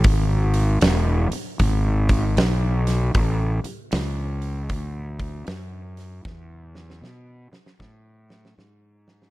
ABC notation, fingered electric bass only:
X:1
M:4/4
L:1/8
Q:"Swing" 1/4=77
K:Emix
V:1 name="Fingered electric bass" clef=bass
G,,,2 E,,, z G,,,2 B,,,2 | A,,, z C,,2 D,,2 F,,2 | E,,2 B,, z A,,2 G,,2 |]